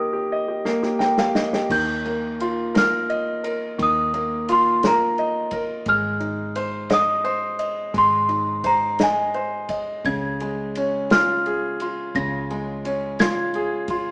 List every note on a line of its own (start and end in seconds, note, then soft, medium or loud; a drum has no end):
0.00 1.66 D#3 medium
0.00 0.60 A#3 medium
0.00 0.13 G4 medium
0.00 1.00 A#4 medium
0.00 0.32 D#5 medium
0.00 0.96 D#6 medium
0.13 0.47 G4 medium
0.32 1.34 D#5 medium
0.48 0.81 G4 soft
0.65 1.67 A#3 medium
0.65 snare medium
0.83 1.17 G4 medium
0.83 snare medium
0.99 1.68 A#4 medium
0.99 1.16 G5 medium
0.99 snare medium
1.18 1.52 G4 medium
1.18 1.34 F5 medium
1.18 snare medium
1.35 1.68 D#5 medium
1.35 snare medium
1.53 1.70 G4 medium
1.53 snare medium
1.70 3.75 D#2 loud
1.70 3.75 D#3 medium
1.70 2.71 G6 medium
1.70 kick medium
1.70 crash medium
2.05 3.41 A#3 medium
2.05 ride soft
2.40 3.76 F4 medium
2.40 ride medium
2.75 3.42 A#4 medium
2.75 3.76 F6 medium
2.75 snare medium
2.75 ride medium
3.10 4.45 D#5 medium
3.10 ride soft
3.44 4.79 A#4 medium
3.44 ride medium
3.78 5.83 D#2 loud
3.78 5.83 D#3 medium
3.78 kick medium
3.78 ride medium
3.83 4.46 D#6 medium
4.14 5.49 A#3 medium
4.14 ride soft
4.49 5.83 F4 medium
4.49 4.86 C6 medium
4.49 ride medium
4.83 5.51 A#4 medium
4.83 snare loud
4.83 ride medium
4.87 5.59 A#5 medium
5.18 5.85 D#5 medium
5.18 ride soft
5.51 5.86 A#4 medium
5.51 kick medium
5.51 ride medium
5.86 7.90 G#1 loud
5.86 7.91 G#3 medium
5.86 6.88 F6 loud
5.86 kick loud
5.86 ride medium
6.20 7.55 D#4 medium
6.20 ride soft
6.55 7.23 C5 medium
6.55 ride medium
6.90 7.58 D#5 medium
6.90 7.99 D#6 medium
6.90 snare loud
6.90 ride medium
7.24 8.60 C5 medium
7.24 ride soft
7.59 8.95 D#5 soft
7.59 ride medium
7.94 10.01 G#1 loud
7.94 10.00 G#3 medium
7.94 kick loud
7.94 ride medium
7.98 8.68 C6 medium
8.29 9.65 D#4 soft
8.29 ride soft
8.64 9.33 C5 medium
8.64 9.01 A#5 medium
8.64 kick medium
8.64 ride medium
8.99 9.68 D#5 medium
8.99 snare medium
8.99 ride medium
9.03 9.76 G#5 medium
9.34 10.03 C5 medium
9.34 ride soft
9.69 10.04 D#5 soft
9.69 kick medium
9.69 ride medium
10.04 12.10 C#2 medium
10.04 12.11 C#3 medium
10.04 11.14 G#6 medium
10.04 kick loud
10.04 ride medium
10.40 11.77 G#3 medium
10.40 ride soft
10.75 12.12 C#4 medium
10.75 ride medium
11.10 11.80 F4 medium
11.10 12.12 F6 loud
11.10 snare loud
11.10 ride medium
11.46 12.81 G#4 medium
11.46 ride soft
11.80 13.16 F4 soft
11.80 ride medium
12.15 14.11 C#2 loud
12.15 14.11 C#3 medium
12.15 13.22 A#6 loud
12.15 kick loud
12.15 ride medium
12.50 13.85 G#3 soft
12.50 ride soft
12.85 14.11 C#4 medium
12.85 ride medium
13.19 13.89 F4 medium
13.19 14.11 G#6 loud
13.19 snare loud
13.19 ride medium
13.54 14.11 G#4 medium
13.54 ride soft
13.88 14.11 F4 medium
13.88 kick medium
13.88 ride medium